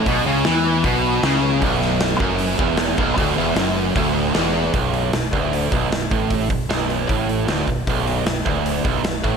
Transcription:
0.06 fingered electric bass B1, overdriven electric guitar B2, kick, open hi-hat
0.25 fingered electric bass C#2, overdriven electric guitar C#3
0.45 fingered electric bass E2, overdriven electric guitar E3, snare, open hi-hat
0.83 fingered electric bass B1, overdriven electric guitar B2, kick, open hi-hat
1.23 fingered electric bass C#2, overdriven electric guitar C#3, snare, open hi-hat
1.62 fingered electric bass B0, overdriven electric guitar B1, kick, open hi-hat
1.82 snare
2.00 snare, open hi-hat
2.20 fingered electric bass F#1, overdriven electric guitar F#2, kick
2.39 open hi-hat
2.59 fingered electric bass E1, overdriven electric guitar E2, kick
2.77 snare, open hi-hat
2.97 fingered electric bass B0, overdriven electric guitar B1, kick
3.17 fingered electric bass D1, overdriven electric guitar D2, kick, open hi-hat
3.37 fingered electric bass E1, overdriven electric guitar E2
3.56 fingered electric bass F#1, overdriven electric guitar F#2, snare, open hi-hat
3.96 fingered electric bass D1, overdriven electric guitar D2, kick, open hi-hat
4.35 fingered electric bass E1, overdriven electric guitar E2, snare, open hi-hat
4.73 fingered electric bass B0, overdriven electric guitar B1, kick, open hi-hat
4.94 open hi-hat
5.13 fingered electric bass B0, overdriven electric guitar B1, snare, open hi-hat
5.32 fingered electric bass D1, overdriven electric guitar D2, kick, open hi-hat
5.53 open hi-hat
5.71 fingered electric bass B0, overdriven electric guitar B1, kick, open hi-hat
5.90 fingered electric bass B0, overdriven electric guitar B1, snare, open hi-hat
6.11 fingered electric bass A1, overdriven electric guitar A2, kick, open hi-hat
6.30 kick, open hi-hat
6.50 fingered electric bass B0, overdriven electric guitar B1, kick, open hi-hat
6.69 fingered electric bass B0, overdriven electric guitar B1, snare, open hi-hat
6.90 open hi-hat
7.09 fingered electric bass A1, overdriven electric guitar A2, kick, open hi-hat
7.29 open hi-hat
7.47 fingered electric bass D1, overdriven electric guitar D2, snare, open hi-hat
7.67 fingered electric bass B0, overdriven electric guitar B1, kick, open hi-hat
7.87 fingered electric bass B0, overdriven electric guitar B1, kick, open hi-hat
8.07 open hi-hat
8.26 fingered electric bass B0, overdriven electric guitar B1, snare, open hi-hat
8.46 fingered electric bass D1, overdriven electric guitar D2, kick, open hi-hat
8.66 open hi-hat
8.85 fingered electric bass B0, overdriven electric guitar B1, kick, open hi-hat
9.04 fingered electric bass B0, overdriven electric guitar B1, snare, open hi-hat
9.23 fingered electric bass A1, overdriven electric guitar A2, kick, open hi-hat

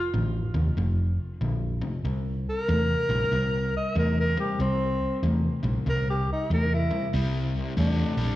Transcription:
Already playing: tenor saxophone F4
0.14 fingered electric bass A1, overdriven electric guitar F2 D3
0.54 fingered electric bass D#2, overdriven electric guitar F2 C3
0.77 fingered electric bass F1, overdriven electric guitar F2 C3
1.41 fingered electric bass A#1, overdriven electric guitar F2 D3
1.82 overdriven electric guitar F2 C3
2.04 fingered electric bass C2, overdriven electric guitar C3 G3
2.49 tenor saxophone A#4
2.68 fingered electric bass E2, overdriven electric guitar C3 A3
3.09 fingered electric bass A#1, overdriven electric guitar C3 G3
3.31 fingered electric bass C2, overdriven electric guitar C3 G3
3.76 tenor saxophone D#5
3.96 fingered electric bass E2, overdriven electric guitar C3 A3, tenor saxophone A#4
4.20 tenor saxophone A#4
4.37 overdriven electric guitar C3 G3, tenor saxophone G4
4.59 fingered electric bass C2, overdriven electric guitar C3 G3, tenor saxophone C4
5.23 fingered electric bass E2, overdriven electric guitar C3 A3
5.63 fingered electric bass A#1, overdriven electric guitar C3 G3
5.86 fingered electric bass C2, overdriven electric guitar C3 G3, tenor saxophone A#4
6.10 tenor saxophone G4
6.32 tenor saxophone D#4
6.50 fingered electric bass E2, overdriven electric guitar C3 A3, tenor saxophone A#4
6.74 tenor saxophone E4
6.91 overdriven electric guitar C3 G3
7.13 fingered electric bass C2, overdriven electric guitar C3 G3
7.77 fingered electric bass E2, overdriven electric guitar C3 A3, tenor saxophone D4
8.17 fingered electric bass A#1, overdriven electric guitar C3 G3

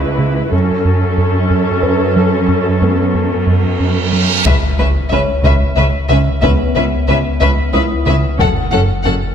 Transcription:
Already playing: cello section C#2, viola section E4 B4
0.19 analog synth bass C#3
0.52 cello section F#2, analog synth bass F#2, viola section C#4 A4
0.85 analog synth bass F#2
1.18 analog synth bass F#2
1.51 analog synth bass F#2
1.83 analog synth bass F#2, grand piano B4
2.16 analog synth bass F#3
2.48 analog synth bass F#2, reverse cymbal
2.82 analog synth bass F#2, grand piano B3 B4
3.15 analog synth bass F#2
3.47 analog synth bass F#2
3.80 analog synth bass F#2
4.13 analog synth bass F#3
4.45 analog synth bass C#2, sub bass C#2, cello section C#2, double bass section C#2, viola section C#4, violin section B4 E5, taiko, impact
4.78 cello section C#2, analog synth bass C#2, double bass section C#2, viola section C#4, violin section B4 E5
5.11 cello section C#2, double bass section C#2, analog synth bass C#2, viola section C#4, grand piano C#4 C#5, violin section B4 E5
5.44 cello section C#2, analog synth bass C#2, double bass section C#2, viola section C#4, violin section B4 E5, taiko
5.77 cello section C#2, analog synth bass C#2, double bass section C#2, viola section C#4, violin section B4 E5
6.09 cello section C#2, double bass section C#2, analog synth bass C#3, viola section C#4, violin section B4 E5
6.42 analog synth bass C#2, cello section C#2, double bass section C#2, grand piano B3 B4, viola section C#4, violin section B4 E5, taiko
6.75 cello section C#2, analog synth bass C#2, double bass section C#2, viola section C#4, violin section B4 E5
7.08 cello section C#2, analog synth bass C#2, double bass section C#2, viola section C#4, violin section B4 E5
7.41 cello section C#2, analog synth bass C#2, double bass section C#2, viola section C#4, violin section B4 E5, taiko
7.73 analog synth bass C#2, cello section C#2, double bass section C#2, viola section C#4, grand piano E4 D#6, violin section B4 E5
8.06 cello section C#2, double bass section C#2, analog synth bass C#3, viola section C#4, violin section B4 E5
8.39 sub bass F#1, double bass section F#1, analog synth bass F#2, cello section F#2, viola section C#4, violin section A4 F#5, grand piano F#5, taiko
8.72 double bass section F#1, cello section F#2, analog synth bass F#2, viola section C#4, violin section A4 F#5
9.05 double bass section F#1, cello section F#2, analog synth bass F#2, viola section C#4, violin section A4 F#5

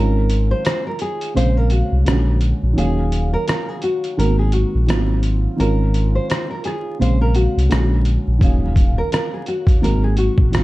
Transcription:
Already playing: sub bass G#1, felt piano D#3 G#3 C4 C#4 F4, nylon-string guitar A#4
0.29 closed hi-hat
0.51 nylon-string guitar C5
0.65 nylon-string guitar C5, cross-stick, closed hi-hat
0.87 nylon-string guitar A#4
0.99 nylon-string guitar G#4, closed hi-hat
1.21 closed hi-hat
1.34 sub bass A#1, felt piano C3 G#3 A#3 C4 F5, nylon-string guitar C5, closed hi-hat
1.41 felt piano C#3
1.57 nylon-string guitar A#4
1.70 nylon-string guitar F#4, closed hi-hat
1.92 sub bass C2
2.05 sub bass A#1, felt piano C#3 G#3 A#3 C#4 F#4, cross-stick, closed hi-hat
2.11 felt piano D3
2.41 closed hi-hat
2.63 sub bass A#1
2.73 sub bass D#1, felt piano D#3 F#3 A#3
2.77 felt piano C#4 F5, nylon-string guitar G#4, closed hi-hat
3.12 closed hi-hat
3.33 nylon-string guitar A#4
3.48 nylon-string guitar A#4, cross-stick, closed hi-hat
3.69 nylon-string guitar G#4
3.82 nylon-string guitar F#4, closed hi-hat
4.04 closed hi-hat
4.17 sub bass G#1, felt piano D#3 G#3 A#3 B3 F#4, nylon-string guitar A#4, closed hi-hat
4.25 felt piano C4
4.39 nylon-string guitar G#4
4.52 nylon-string guitar F#4, closed hi-hat
4.75 sub bass A#1
4.87 sub bass G#1, felt piano D#3 F#3 A#3 B3 F4, cross-stick, closed hi-hat
4.95 felt piano C4
5.23 closed hi-hat
5.56 sub bass G#1, felt piano D#3 G#3 C4, nylon-string guitar A#4, closed hi-hat
5.60 felt piano C#4 F4
5.94 closed hi-hat
6.15 nylon-string guitar C5
6.30 nylon-string guitar C5, cross-stick, closed hi-hat
6.51 nylon-string guitar A#4
6.64 nylon-string guitar G#4, cross-stick, closed hi-hat
6.99 sub bass A#1, felt piano C3 G#3 A#3 C4 F5, nylon-string guitar C5, closed hi-hat
7.05 felt piano C#3
7.21 nylon-string guitar A#4
7.34 nylon-string guitar F#4, closed hi-hat
7.57 sub bass C2, closed hi-hat
7.69 sub bass A#1, felt piano D3 G#3 A#3 C#4 F#4, cross-stick, closed hi-hat
8.05 closed hi-hat
8.27 sub bass A#1
8.39 sub bass D#1, felt piano D#3 F#3 A#3, nylon-string guitar G#4, kick, closed hi-hat
8.43 felt piano C#4 F5
8.76 kick, closed hi-hat
8.98 nylon-string guitar A#4
9.12 nylon-string guitar A#4, cross-stick, closed hi-hat
9.34 nylon-string guitar G#4
9.46 nylon-string guitar F#4, closed hi-hat
9.67 kick, closed hi-hat
9.81 sub bass G#1, felt piano D#3 G#3 A#3 C4 F#4, nylon-string guitar A#4, closed hi-hat
10.04 nylon-string guitar G#4
10.17 nylon-string guitar F#4, closed hi-hat
10.38 sub bass A#1, kick
10.51 sub bass G#1, felt piano D#3 F#3 A#3 C4 F4, cross-stick, closed hi-hat

